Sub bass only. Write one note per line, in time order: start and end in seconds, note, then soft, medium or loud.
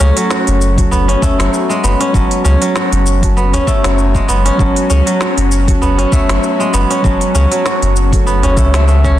0.00 0.11 C#2 medium
0.47 1.15 F#1 medium
1.39 1.48 F#1 loud
1.84 1.95 F#1 medium
2.14 2.26 F#1 loud
2.45 2.56 C#2 medium
2.92 3.60 F#1 medium
3.84 4.21 F#1 medium
4.29 4.50 F#1 medium
4.59 4.71 F#1 medium
4.90 5.01 C#2 medium
5.37 6.05 F#1 medium
6.29 6.38 F#1 loud
6.74 6.85 F#1 medium
7.04 7.15 F#1 medium
7.35 7.46 C#2 medium
7.82 8.58 F#1 medium
8.57 9.19 C#2 loud